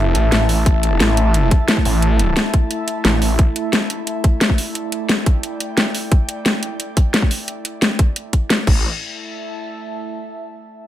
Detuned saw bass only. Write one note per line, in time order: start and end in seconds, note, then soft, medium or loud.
0.00 0.14 A1 loud
0.15 0.31 A1 loud
0.32 0.65 A1 loud
0.66 0.99 A1 loud
1.00 1.50 A1 medium
1.85 2.35 A1 loud
3.05 3.37 A1 loud
8.67 8.83 A1 loud